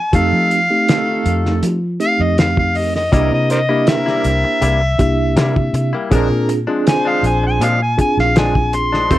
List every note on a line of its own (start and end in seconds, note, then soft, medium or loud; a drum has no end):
0.00 0.17 G#5 loud
0.12 0.31 F2 medium
0.12 0.59 A3 medium
0.12 0.50 A3 medium
0.12 0.59 C4 medium
0.12 0.50 D#4 medium
0.12 0.59 D#4 medium
0.12 0.50 F4 medium
0.12 0.59 G4 medium
0.12 0.50 A4 medium
0.12 1.60 F5 loud
0.12 kick loud
0.12 closed hi-hat medium
0.33 0.67 F3 medium
0.51 closed hi-hat medium
0.70 1.77 A3 medium
0.70 1.77 C4 medium
0.70 1.77 D#4 medium
0.70 1.77 G4 medium
0.88 1.63 A3 medium
0.88 1.63 D#4 medium
0.88 1.63 F4 medium
0.88 1.63 A4 medium
0.88 snare loud
0.88 closed hi-hat medium
1.26 1.60 F2 loud
1.26 closed hi-hat medium
1.46 snare soft
1.63 1.98 F3 loud
1.63 closed hi-hat medium
2.00 2.93 A3 medium
2.00 2.93 C4 medium
2.00 2.93 D#4 medium
2.00 2.93 G4 medium
2.00 2.24 F5 loud
2.00 closed hi-hat medium
2.20 3.08 F2 medium
2.20 2.38 D#5 loud
2.38 2.56 F5 medium
2.38 snare loud
2.38 closed hi-hat medium
2.57 2.78 F5 medium
2.57 kick medium
2.75 2.94 D#5 medium
2.75 open hi-hat medium
2.95 3.12 D#5 loud
2.95 snare soft
3.12 3.31 C2 medium
3.12 3.32 C3 medium
3.12 3.32 G3 medium
3.12 3.59 A#3 medium
3.12 3.32 A#3 medium
3.12 3.50 A#3 medium
3.12 3.50 C4 medium
3.12 3.59 D4 medium
3.12 3.59 E4 medium
3.12 3.31 E4 medium
3.12 3.51 E4 medium
3.12 3.59 G4 medium
3.12 3.50 A#4 medium
3.12 3.31 D#5 loud
3.12 kick loud
3.12 closed hi-hat medium
3.32 4.21 C3 medium
3.32 3.49 D#5 medium
3.32 muted clean electric guitar stroke soft
3.50 3.59 A#4 medium
3.50 3.58 C5 medium
3.50 3.90 D#5 loud
3.50 muted clean electric guitar stroke soft
3.50 closed hi-hat medium
3.69 3.86 G3 soft
3.69 4.76 A#3 medium
3.69 3.87 A#3 soft
3.69 4.76 D4 medium
3.69 4.76 E4 medium
3.69 3.87 E4 medium
3.69 4.76 G4 medium
3.87 4.63 A#3 medium
3.87 4.62 C4 medium
3.87 4.62 E4 medium
3.87 4.63 A#4 medium
3.87 6.08 E5 loud
3.87 muted clean electric guitar stroke soft
3.87 snare loud
3.87 closed hi-hat medium
4.06 4.29 G3 soft
4.06 4.29 A#3 soft
4.06 4.28 E4 medium
4.06 snare soft
4.24 4.43 C2 medium
4.24 closed hi-hat medium
4.44 muted clean electric guitar stroke medium
4.62 4.97 C2 loud
4.62 4.81 C3 medium
4.62 4.82 G3 medium
4.62 4.81 A#3 medium
4.62 4.80 E4 medium
4.62 closed hi-hat medium
4.82 muted clean electric guitar stroke medium
4.99 5.34 C2 medium
4.99 5.92 A#3 medium
4.99 5.91 D4 medium
4.99 5.92 E4 medium
4.99 5.92 G4 medium
4.99 muted clean electric guitar stroke soft
4.99 kick medium
4.99 closed hi-hat medium
5.36 5.71 C3 loud
5.36 5.56 C3 medium
5.36 5.56 G3 medium
5.36 5.56 A#3 medium
5.36 5.55 E4 medium
5.36 snare loud
5.36 closed hi-hat medium
5.56 muted clean electric guitar stroke soft
5.56 kick medium
5.73 5.92 C3 medium
5.73 muted clean electric guitar stroke soft
5.73 closed hi-hat medium
5.93 6.11 G3 soft
5.93 6.12 A#3 medium
5.93 6.11 E4 medium
6.10 6.30 A#1 medium
6.10 6.31 A#2 medium
6.10 6.31 F3 medium
6.10 6.30 G#3 medium
6.10 6.50 A#3 medium
6.10 6.57 C4 medium
6.10 6.58 D4 medium
6.10 6.49 D4 loud
6.10 6.29 D4 loud
6.10 6.57 F4 medium
6.10 6.57 G#4 medium
6.10 6.50 G#4 medium
6.10 6.50 A#4 loud
6.10 kick medium
6.10 closed hi-hat medium
6.30 6.66 A#2 medium
6.30 muted clean electric guitar stroke soft
6.49 muted clean electric guitar stroke soft
6.49 closed hi-hat medium
6.67 6.85 F3 soft
6.67 6.86 G#3 medium
6.67 7.75 C4 medium
6.67 6.86 D4 medium
6.67 7.75 D4 medium
6.67 7.75 F4 medium
6.67 7.75 G#4 medium
6.86 7.62 C4 medium
6.86 7.61 D4 medium
6.86 7.61 G#4 medium
6.86 7.62 C5 medium
6.86 7.09 G#5 loud
6.86 muted clean electric guitar stroke soft
6.86 snare loud
6.86 closed hi-hat medium
7.05 7.29 F3 soft
7.05 7.28 G#3 soft
7.05 7.27 D4 medium
7.05 7.23 F5 loud
7.23 7.58 A#1 medium
7.23 7.43 G#5 medium
7.23 closed hi-hat medium
7.43 7.65 G#5 medium
7.43 muted clean electric guitar stroke medium
7.60 7.96 A#2 loud
7.60 7.81 A#2 medium
7.60 7.81 F3 medium
7.60 7.80 G#3 medium
7.60 7.79 D4 medium
7.60 7.81 F5 loud
7.60 closed hi-hat medium
7.81 7.98 G#5 medium
7.81 muted clean electric guitar stroke medium
7.98 8.91 C4 medium
7.98 8.91 D4 medium
7.98 8.91 F4 medium
7.98 8.91 G#4 medium
7.98 8.18 G#5 loud
7.98 muted clean electric guitar stroke soft
7.98 kick medium
7.98 closed hi-hat medium
8.17 9.06 A#1 medium
8.17 8.36 F5 loud
8.17 snare soft
8.36 8.55 A#2 medium
8.36 8.56 F3 medium
8.36 8.55 G#3 medium
8.36 8.54 D4 medium
8.36 8.76 G#5 medium
8.36 snare loud
8.36 closed hi-hat medium
8.55 muted clean electric guitar stroke soft
8.55 kick medium
8.73 9.19 C6 loud
8.73 muted clean electric guitar stroke soft
8.73 closed hi-hat medium
8.92 9.11 F3 soft
8.92 9.11 G#3 medium
8.92 9.11 D4 medium
8.92 snare soft
9.10 9.19 F1 medium
9.10 9.19 F2 medium
9.10 9.19 D#3 medium
9.10 9.19 A3 medium
9.10 9.19 C4 medium
9.10 9.19 C4 loud
9.10 9.19 D#4 medium
9.10 9.19 F4 medium
9.10 9.19 G4 medium
9.10 9.19 A4 medium
9.10 kick loud
9.10 closed hi-hat medium